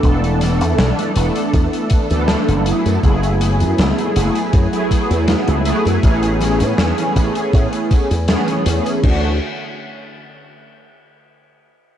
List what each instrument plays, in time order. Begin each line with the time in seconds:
Already playing: ambient pad A3 E5 B5 D6
0.02 slap bass E1, analog polysynth E3 A3 B3 D4 A4, kick, closed hi-hat, tambourine
0.24 closed hi-hat
0.41 snare, closed hi-hat, tambourine
0.61 slap bass E2, closed hi-hat, tambourine
0.78 slap bass B1, snare, closed hi-hat, tambourine
0.99 closed hi-hat
1.14 slap bass E1, analog polysynth E3 A3 B3 D4 A4, closed hi-hat, tambourine
1.36 closed hi-hat, tambourine
1.53 slap bass E2, kick, closed hi-hat, tambourine
1.73 closed hi-hat
1.90 kick, closed hi-hat, tambourine
2.10 slap bass D2, analog polysynth E3 A3 B3 D4 A4, closed hi-hat, tambourine
2.28 snare, closed hi-hat, tambourine
2.48 slap bass F#1, closed hi-hat
2.65 analog polysynth F#3 A3 B3 E4 G#4, ambient pad G#5, closed hi-hat, tambourine
2.85 slap bass F#2, analog polysynth F#3 A3 B3 E4 A4, closed hi-hat, tambourine
3.02 slap bass F#1, analog polysynth F#3 A3 B3 E4 G#4, kick, closed hi-hat, tambourine
3.23 closed hi-hat
3.41 closed hi-hat, tambourine
3.60 slap bass F#2, closed hi-hat, tambourine
3.78 slap bass C#2, snare, closed hi-hat, tambourine
3.98 closed hi-hat
4.15 slap bass F#1, analog polysynth F#3 A3 B3 E4 G#4, closed hi-hat, tambourine
4.35 closed hi-hat, tambourine
4.53 slap bass F#2, kick, closed hi-hat
4.71 analog polysynth F#3 A3 B3 E4 G#4, closed hi-hat
4.91 kick, closed hi-hat, tambourine
5.10 slap bass E2, closed hi-hat, tambourine
5.28 snare, closed hi-hat, tambourine
5.48 slap bass C#2, closed hi-hat
5.64 analog polysynth F#3 A3 B3 E4 G#4, closed hi-hat, tambourine
5.85 slap bass F#2, closed hi-hat, tambourine
6.02 slap bass A1, analog polysynth E3 A3 B3 C#4 G#4, ambient pad C#5 G#5, kick, closed hi-hat, tambourine
6.23 closed hi-hat
6.40 snare, closed hi-hat, tambourine
6.60 slap bass A2, closed hi-hat, tambourine
6.78 slap bass E2, snare, closed hi-hat, tambourine
6.98 closed hi-hat
7.15 slap bass A1, analog polysynth E3 A3 B3 C#4 G#4, kick, closed hi-hat, tambourine
7.35 closed hi-hat, tambourine
7.53 slap bass A2, kick, closed hi-hat, tambourine
7.73 closed hi-hat
7.91 kick, closed hi-hat, tambourine
8.11 slap bass E2, closed hi-hat, tambourine
8.27 analog polysynth E3 A3 B3 C#4 G#4, snare, closed hi-hat, tambourine
8.48 closed hi-hat
8.66 slap bass E2, closed hi-hat, tambourine
8.86 closed hi-hat, tambourine
9.01 slap bass D2, analog polysynth E3 A3 C#4 D4, kick, crash
9.06 analog polysynth F#4